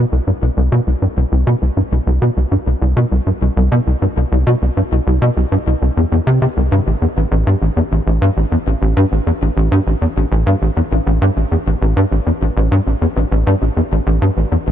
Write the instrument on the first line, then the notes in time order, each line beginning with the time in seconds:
analog synth bass
0.12 C2
0.27 G2
0.42 C2
0.57 C2
0.72 B2
0.87 C2
1.02 G2
1.17 C2
1.32 C2
1.47 B2
1.62 C2
1.77 G2
1.92 C2
2.07 C2
2.22 B2
2.37 C2
2.52 G2
2.67 C2
2.82 C2
2.97 B2
3.12 C2
3.27 G2
3.42 C2
3.57 C2
3.72 B2
3.87 C2
4.02 G2
4.17 C2
4.32 C2
4.47 B2
4.62 C2
4.77 G2
4.92 C2
5.07 C2
5.22 B2
5.37 C2
5.52 G2
5.67 C2
5.82 C2
5.97 E2
6.12 E2
6.27 C3
6.42 C3
6.57 C2
6.72 G2
6.87 A1
7.02 E2
7.17 A1
7.32 A1
7.47 G2
7.62 A1
7.77 E2
7.92 A1
8.07 A1
8.22 G2
8.37 A1
8.52 E2
8.67 A1
8.82 A1
8.97 G2
9.12 A1
9.27 E2
9.42 A1
9.57 A1
9.72 G2
9.87 A1
10.02 E2
10.17 A1
10.32 A1
10.47 G2
10.62 A1
10.77 E2
10.92 A1
11.07 A1
11.22 G2
11.37 A1
11.52 E2
11.67 A1
11.82 A1
11.97 G2
12.12 A1
12.27 E2
12.42 A1
12.57 A1
12.72 G2
12.87 A1
13.02 E2
13.16 A1
13.32 A1
13.47 G2
13.62 A1
13.77 E2
13.92 A1
14.07 A1
14.22 G2
14.37 A1
14.52 E2
14.67 A1